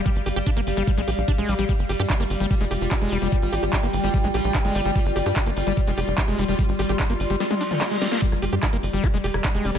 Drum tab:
HH |xxoxxxoxxxoxxxox|xxo-xxoxxxoxxxox|xxoxxxoxxxoxxxox|xxoxxxoxxxoxxxox|
CP |----------------|----x-------x---|----x-------x---|----x-------x---|
SD |----------------|----------------|----------------|----------------|
T1 |----------------|----------------|----------------|----------------|
T2 |----------------|----------------|----------------|----------------|
BD |o---o---o---o---|o---o---o---o---|o---o---o---o---|o---o---o---o---|

HH |xxoxxxoxxxoxxxox|xxoxxxoxxxoxxxox|
CP |----x-------x---|----x-------x---|
SD |--------o---o-oo|-r--r---r--r---r|
T1 |---------o------|----------------|
T2 |-----------o----|----------------|
BD |o---o-----------|o---o---o---o---|